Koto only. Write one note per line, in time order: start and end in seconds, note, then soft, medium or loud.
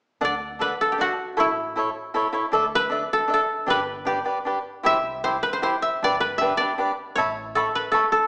0.25 1.85 D5 medium
0.61 2.39 B4 medium
0.81 2.71 A4 medium
0.92 1.07 G4 soft
1.01 3.12 F#4 medium
1.40 3.66 E4 medium
2.75 3.70 B4 medium
3.13 3.33 A4 medium
3.34 5.24 A4 medium
3.70 5.30 B4 medium
4.07 6.11 G4 soft
4.86 5.82 E5 medium
5.24 5.49 C5 medium
5.43 5.59 B4 medium
5.53 5.59 C5 medium
5.63 6.26 C5 medium
5.82 6.38 E5 medium
6.04 6.57 D5 medium
6.20 7.75 B4 medium
6.38 7.87 E5 medium
6.57 7.21 D5 medium
7.16 8.27 C#5 medium
7.55 7.91 A4 medium
7.75 8.27 B4 medium
7.92 8.12 A4 medium
8.12 8.27 A4 medium